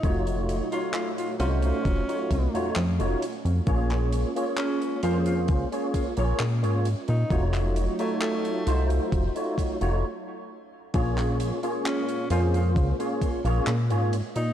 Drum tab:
HH |xxxxxxxxxxxxxxxx|xxxxxxxxxxxxxxxx|xxxxxxxxxxxx----|xxxxxxxxxxxxxxxx|
CP |----x-------x---|-x--x-------x---|-x--x-----------|-x--x-------x---|
BD |o-------o-o-----|o-------o-o-----|o-------o-o-----|o-------o-o-----|